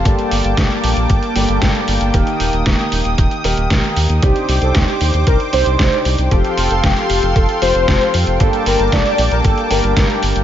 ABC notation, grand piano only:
X:1
M:4/4
L:1/8
Q:1/4=115
K:Gm
V:1 name="Grand piano"
[G,,B,DGA]4- [G,,B,DGA] [G,,B,DGA]3 | [E,B,EGB]4- [E,B,EGB] [E,B,EGB]3 | [C,CDEG]4- [C,CDEG] [C,CDEG]3 | [F,CFGA]4- [F,CFGA] [F,CFGA]3 |
[G,,B,DGA]4- [G,,B,DGA] [G,,B,DGa]3 |]